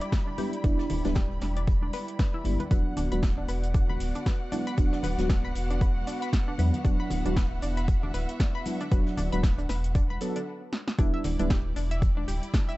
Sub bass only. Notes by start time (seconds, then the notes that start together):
0.64 E1
0.90 D1
1.05 D1
1.41 E1
2.45 G1
2.71 E1
2.97 D1
3.12 D1
3.48 E1
4.00 D1
4.78 E1
5.04 D1
5.18 D1
5.55 E1
6.59 E2
6.85 E1
7.10 D1
7.25 D1
7.62 E1
8.14 D1
8.92 E1
9.17 D1
9.32 D1
9.69 E1
10.99 E1
11.24 D1
11.39 D1
11.76 E1
12.28 D1